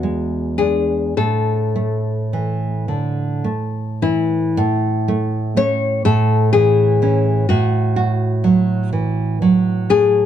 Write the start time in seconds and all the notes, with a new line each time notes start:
Already playing: E2 F#4
0.03 G#3
0.58 G#3 D4 G#4
1.17 A2 A4
1.76 A3
2.33 E3
2.88 D3
3.44 A3
4.02 E3 E4
4.57 A2
5.08 A3
5.57 A3 C#4 C#5
6.05 A2 A4
6.53 E3 G#4
7.02 E3 C#4
7.49 A2 F#4
7.96 F#4
8.44 F#3
8.93 E3
9.42 F#3
9.90 A3 G#4